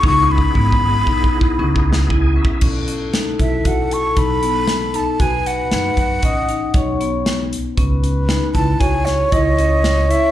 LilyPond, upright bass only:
\new Staff \with { instrumentName = "Upright bass" } { \clef bass \time 5/4 \key b \mixolydian \tempo 4 = 116 cis,4 gis,,8 gis,,8 b,,4 cis,2 | b,,4. b,,8 b,,4 b,,2 | b,,4 fis,8 fis,8 a,,4 b,,2 | cis,4. cis,8 cis,4 cis,2 | }